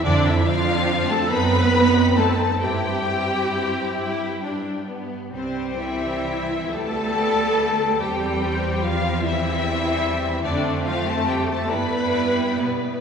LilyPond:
<<
  \new Staff \with { instrumentName = "Violin section" } { \time 6/8 \key c \major \tempo 4. = 46 d''16 e''16 f''8. a''16 b''4 a''8 | g''2~ g''8 r8 | c''8 e''4 a''4. | g''4 f''8 e''4. |
d''8 f''16 a''16 g''16 a''16 b''4 b'8 | }
  \new Staff \with { instrumentName = "Viola section" } { \time 6/8 \key c \major d'16 e'16 f'8. a'16 b'4 a'8 | g'2~ g'8 r8 | c'8 e'4 a'4. | g'4 f'8 e'4. |
d'8 f'16 a'16 g'16 a'16 b'4 b8 | }
  \new Staff \with { instrumentName = "Violin section" } { \time 6/8 \key c \major <c' d'>8 <c' d'>4 <c' dis'>8 <c' dis'>4 | <c' e'>8 <c' e'>4 e'8 d'8 b8 | <g c'>4. <g b>4. | <g c'>4. <g c'>4. |
<a c'>4. <g e'>4. | }
  \new Staff \with { instrumentName = "Cello section" } { \clef bass \time 6/8 \key c \major d16 e16 f8. a16 b4 a8 | g2~ g8 r8 | c8 e4 a4. | g4 f8 e4. |
d8 f16 a16 g16 a16 b4 b,8 | }
  \new Staff \with { instrumentName = "Double bass section" } { \clef bass \time 6/8 \key c \major f,4. fis,4. | g,4. g,4. | c,4. d,4. | e,2. |
f,4. g,4. | }
>>